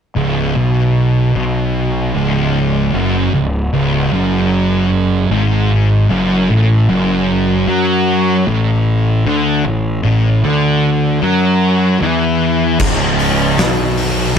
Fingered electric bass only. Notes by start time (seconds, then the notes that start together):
0.16 C#1
0.56 B1
1.36 B1
2.14 C#1
2.94 F#1
3.34 C#1
3.73 C#1
4.12 F#1
5.30 G#1
6.10 F#1
6.50 A1
6.90 F#1
7.67 F#2
8.47 A1
9.25 D2
9.65 A1
10.05 A1
10.44 D2
11.22 F#2
12.01 E2
12.80 C#1
13.58 B1